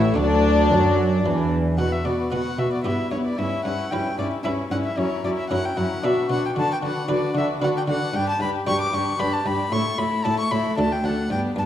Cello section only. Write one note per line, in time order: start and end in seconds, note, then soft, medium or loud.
0.00 0.18 A2 medium
0.17 0.70 D3 medium
0.72 1.25 F#3 medium
1.25 1.78 E3 medium
1.79 1.87 B2 soft
2.06 2.14 B2 soft
2.32 2.40 B2 soft
2.59 2.67 B2 soft
2.86 2.94 G2 soft
3.12 3.20 G2 soft
3.39 3.47 G2 medium
3.65 3.73 G2 soft
3.92 4.00 G2 soft
4.18 4.26 G2 soft
4.45 4.53 G2 soft
4.71 4.79 G2 soft
4.98 5.06 F#2 medium
5.25 5.33 F#2 soft
5.51 5.59 F#2 soft
5.77 5.85 F#2 medium
6.04 6.12 B2 soft
6.31 6.39 B2 medium
6.58 6.66 D3 medium
6.83 6.91 D3 soft
7.09 7.17 D3 medium
7.36 7.44 D3 medium
7.62 7.70 D3 medium
7.88 7.96 D3 medium
8.15 8.23 G2 medium
8.41 8.49 G2 medium
8.68 8.76 G2 medium
8.94 9.02 G2 medium
9.21 9.29 G2 medium
9.47 9.55 G2 medium
9.73 9.81 A2 medium
10.00 10.08 A2 medium
10.26 10.34 A2 medium
10.52 10.60 A2 medium
10.79 10.87 D2 medium
11.05 11.13 D2 medium
11.31 11.39 G2 medium
11.57 11.65 G2 medium